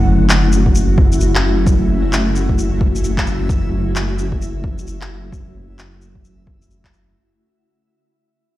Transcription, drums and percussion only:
0.29 clap, shaker
0.52 shaker
0.66 kick
0.75 shaker
0.98 kick
1.12 shaker
1.21 shaker
1.35 clap
1.67 kick, shaker
2.13 clap, shaker
2.36 shaker
2.49 kick
2.58 shaker
2.81 kick
2.96 shaker
3.04 shaker
3.18 kick, clap
3.27 shaker
3.49 kick, shaker
3.96 clap, shaker
4.19 shaker
4.32 kick
4.42 shaker
4.64 kick
4.79 shaker
4.87 shaker
5.01 clap
5.32 kick, shaker
5.79 clap, shaker
6.02 shaker
6.15 kick
6.25 shaker
6.47 kick
6.62 shaker
6.71 shaker
6.84 kick, clap
6.93 shaker

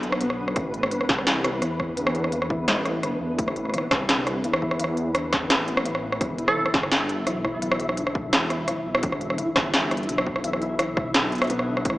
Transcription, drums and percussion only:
0.03 closed hi-hat
0.12 cross-stick
0.21 closed hi-hat
0.30 cross-stick
0.48 cross-stick
0.56 kick, cross-stick, closed hi-hat
0.74 closed hi-hat
0.83 cross-stick
0.91 closed hi-hat
1.01 cross-stick
1.09 kick, snare
1.18 cross-stick
1.27 snare, closed hi-hat
1.44 cross-stick, closed hi-hat
1.62 cross-stick, closed hi-hat
1.80 kick, cross-stick
1.97 closed hi-hat
2.07 cross-stick
2.15 closed hi-hat
2.24 cross-stick
2.32 closed hi-hat
2.42 cross-stick
2.50 kick
2.68 cross-stick, snare, closed hi-hat
2.85 cross-stick, closed hi-hat
3.03 cross-stick, closed hi-hat
3.39 kick, closed hi-hat
3.48 cross-stick
3.56 closed hi-hat
3.65 cross-stick
3.69 cross-stick
3.74 cross-stick, closed hi-hat
3.78 cross-stick
3.91 kick, cross-stick, snare
4.09 cross-stick, snare, closed hi-hat
4.27 cross-stick, closed hi-hat
4.44 closed hi-hat
4.53 cross-stick
4.62 kick
4.71 cross-stick
4.80 closed hi-hat
4.84 cross-stick
4.97 closed hi-hat
5.15 cross-stick, closed hi-hat
5.33 kick, cross-stick, snare, closed hi-hat
5.50 cross-stick, snare, closed hi-hat
5.68 closed hi-hat
5.77 cross-stick
5.85 closed hi-hat
5.95 cross-stick
6.12 cross-stick
6.21 kick, cross-stick, closed hi-hat
6.38 closed hi-hat
6.48 cross-stick
6.66 cross-stick
6.74 kick, snare
6.83 cross-stick
6.92 snare, closed hi-hat
7.09 closed hi-hat
7.27 cross-stick, closed hi-hat
7.45 kick, cross-stick
7.62 closed hi-hat
7.72 cross-stick
7.80 closed hi-hat
7.89 cross-stick
7.97 closed hi-hat
8.07 cross-stick
8.15 kick
8.33 cross-stick, snare, closed hi-hat
8.50 cross-stick, closed hi-hat
8.68 cross-stick, closed hi-hat
8.95 cross-stick
9.03 kick, closed hi-hat
9.12 cross-stick
9.21 closed hi-hat
9.30 cross-stick
9.38 closed hi-hat
9.56 kick, cross-stick, snare
9.74 cross-stick, snare, closed hi-hat
9.91 cross-stick, closed hi-hat
9.97 closed hi-hat
10.03 closed hi-hat
10.09 closed hi-hat
10.18 cross-stick
10.27 kick
10.36 cross-stick
10.44 closed hi-hat
10.53 cross-stick
10.62 closed hi-hat
10.79 cross-stick, closed hi-hat
10.97 kick, cross-stick
11.14 cross-stick, snare, closed hi-hat
11.32 closed hi-hat
11.35 closed hi-hat
11.38 cross-stick, closed hi-hat
11.42 closed hi-hat
11.44 closed hi-hat
11.47 closed hi-hat
11.50 closed hi-hat
11.59 cross-stick
11.77 cross-stick
11.85 kick, closed hi-hat
11.90 cross-stick

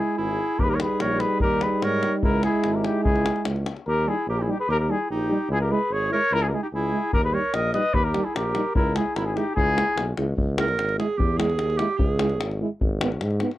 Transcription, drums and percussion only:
0.59 davul low
0.80 davul high
1.00 davul high
1.20 davul high
1.40 davul low
1.61 davul high
1.82 davul high
2.03 davul high
2.23 davul low
2.43 davul high
2.64 davul high
2.84 davul high
3.05 davul low
3.16 davul high
3.26 davul high
3.36 davul high
3.45 davul high
3.56 davul high
3.66 davul high
3.77 davul high
7.13 davul low
7.54 davul high
7.74 davul high
7.94 davul low
8.14 davul high
8.36 davul high
8.55 davul high
8.75 davul low
8.96 davul high
9.16 davul high
9.37 davul high
9.57 davul low
9.78 davul high
9.98 davul high
10.17 davul high
10.38 davul low
10.58 davul high
10.68 davul high
10.79 davul high
10.89 davul high
11.00 davul high
11.20 davul low
11.40 davul high
11.50 davul high
11.59 davul high
11.70 davul high
11.79 davul high
11.99 davul low
12.19 davul high
12.29 davul high
12.41 davul high
12.51 davul high
12.81 davul low
13.01 davul high
13.12 davul high
13.21 davul high
13.31 davul high
13.40 davul high
13.51 davul high

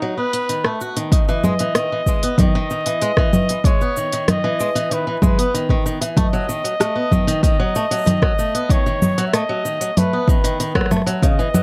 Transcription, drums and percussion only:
0.33 open hi-hat, cabasa
0.49 open hi-hat, cabasa
0.65 cross-stick
0.81 cabasa
0.97 open hi-hat, cabasa
1.12 kick, open hi-hat, cabasa
1.29 cabasa
1.44 low conga, cabasa
1.59 open hi-hat, cabasa
1.75 cross-stick, open hi-hat, cabasa
2.06 kick, cabasa
2.23 open hi-hat, cabasa
2.38 kick, open hi-hat, low conga, cabasa
2.70 cabasa
2.86 open hi-hat, cabasa
3.01 open hi-hat, cabasa
3.17 kick, cross-stick
3.33 low conga, cabasa
3.49 open hi-hat, cabasa
3.64 kick, open hi-hat, cabasa
3.81 cabasa
3.97 cabasa
4.13 open hi-hat, cabasa
4.28 cross-stick, open hi-hat, low conga, cabasa
4.60 cabasa
4.76 open hi-hat, cabasa
4.91 open hi-hat, cabasa
5.22 kick, low conga, cabasa
5.39 open hi-hat, cabasa
5.55 open hi-hat, cabasa
5.69 kick
5.86 cabasa
6.02 open hi-hat, cabasa
6.17 kick, open hi-hat, low conga, cabasa
6.34 cabasa
6.49 cabasa
6.65 open hi-hat, cabasa
6.81 cross-stick, open hi-hat, cabasa
7.11 kick, low conga, cabasa
7.28 open hi-hat, cabasa
7.43 kick, open hi-hat, cabasa
7.75 cabasa
7.91 open hi-hat, cabasa
7.94 cabasa
7.96 cabasa
7.98 cabasa
8.01 cabasa
8.03 cabasa
8.05 open hi-hat, low conga, cabasa
8.07 cabasa
8.22 kick, cross-stick
8.39 cabasa
8.55 open hi-hat, cabasa
8.69 kick, open hi-hat, cabasa
8.86 cabasa
9.02 low conga, cabasa
9.18 open hi-hat, cabasa
9.33 cross-stick, open hi-hat, cabasa
9.66 cabasa
9.81 open hi-hat, cabasa
9.97 open hi-hat, low conga, cabasa
10.28 kick, cabasa
10.45 open hi-hat, cabasa
10.60 open hi-hat, cabasa
10.75 kick, cross-stick
10.81 cross-stick
10.86 cross-stick
10.91 cross-stick, low conga, cabasa
10.97 cross-stick
11.02 cross-stick
11.07 open hi-hat, cabasa
11.22 kick, open hi-hat, cabasa
11.39 cabasa
11.54 low conga, cabasa

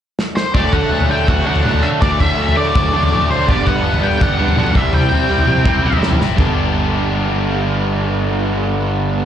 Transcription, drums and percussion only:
0.19 snare
0.37 snare
0.54 kick, floor tom
0.73 kick, floor tom
1.00 floor tom
1.28 kick, floor tom
1.56 floor tom
1.65 mid tom
1.74 floor tom
2.02 kick, floor tom
2.20 kick, floor tom
2.49 floor tom
2.75 kick, floor tom
3.03 floor tom
3.13 mid tom
3.22 floor tom
3.49 kick, floor tom
3.67 kick, floor tom
3.94 floor tom
4.21 kick, floor tom
4.48 floor tom
4.57 mid tom
4.66 floor tom
4.75 kick
4.93 floor tom
5.11 floor tom
5.39 floor tom
5.48 mid tom
5.65 kick, floor tom
5.93 floor tom
6.02 snare, mid tom
6.11 floor tom, mid tom
6.21 snare
6.38 kick, floor tom

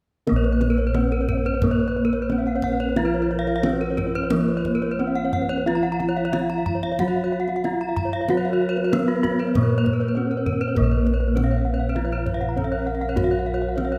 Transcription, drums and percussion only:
0.27 kendang high
0.44 kendang slap
0.61 kendang high
0.78 kendang slap
0.94 kendang high
1.11 kendang slap
1.29 kendang low
1.45 kendang slap
1.62 kendang low
2.13 kendang slap
2.30 kendang high
2.46 kendang slap
2.62 kendang low
2.80 kendang slap
2.96 kendang high
3.14 kendang slap
3.47 kendang slap
3.63 kendang high
3.81 kendang slap
3.98 kendang high, kendang low
4.15 kendang slap
4.30 kendang high, kendang low
4.65 kendang low
4.82 kendang slap
5.15 kendang slap
5.33 kendang low
5.50 kendang slap
5.67 kendang high
5.84 kendang slap
6.00 kendang high
6.17 kendang slap
6.33 kendang high
6.50 kendang slap
6.66 kendang low
6.83 kendang slap
6.99 kendang low
7.48 kendang slap
7.64 kendang high
7.80 kendang slap
7.97 kendang low
8.28 kendang high
8.45 kendang slap
8.77 kendang slap
8.93 kendang high
9.09 kendang slap
9.24 kendang high, kendang low
9.39 kendang slap
9.55 kendang high, kendang low
9.86 kendang low
10.01 kendang slap
10.31 kendang slap
10.46 kendang low
10.62 kendang slap
10.76 kendang high, kendang low
10.92 kendang slap
11.07 kendang high
11.37 kendang slap, kendang high
11.67 kendang slap
11.96 kendang high
12.26 kendang slap, kendang low
12.41 kendang slap
12.57 kendang slap, kendang low
12.87 kendang slap
13.02 kendang slap
13.17 kendang high, kendang low
13.32 kendang slap
13.78 kendang slap, kendang high

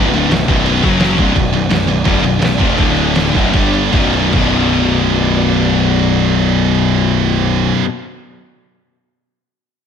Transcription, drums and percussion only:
0.14 crash
0.31 snare, crash
0.48 kick, crash
0.66 crash
0.83 kick, crash
1.00 snare, crash
1.18 kick, crash
1.36 kick, crash
1.54 crash
1.70 snare, crash
1.88 crash
2.05 kick, crash
2.24 crash
2.42 snare, crash
2.60 kick, crash
2.78 kick, crash
2.97 crash
3.15 snare, crash
3.35 kick, crash
3.53 kick, crash
3.73 crash
3.93 kick, crash
4.13 crash
4.33 kick, crash

